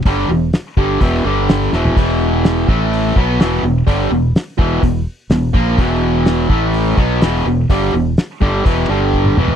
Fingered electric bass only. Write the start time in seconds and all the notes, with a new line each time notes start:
0.06 G1
0.29 E1
0.77 G1
1.01 E1
1.25 G1
1.73 E1
1.97 E1
2.68 A1
3.16 B1
3.39 E1
3.63 E1
3.87 G1
4.11 E1
4.59 E1
4.83 E1
5.30 E1
5.55 A#1
5.78 E1
6.50 A1
6.98 B1
7.23 E1
7.46 E1
7.70 G1
7.94 E1
8.42 G1
8.66 E1
8.89 G1
9.38 E1